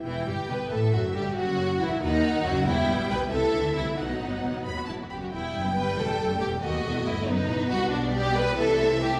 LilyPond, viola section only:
\new Staff \with { instrumentName = "Viola section" } { \clef bass \time 6/8 \key e \minor \tempo 4. = 92 << { e8 g8 b8 a8 fis8 g8 | fis4 e8 dis4 fis8 | b4. a4. | b2~ b8 r8 |
b4. a4. | b4. b4. | \key g \major b4. a4. | } \\ { r2. | r2. | g4. e4. | fis2~ fis8 r8 |
g2. | a4. b4. | g4. e4. | } >> }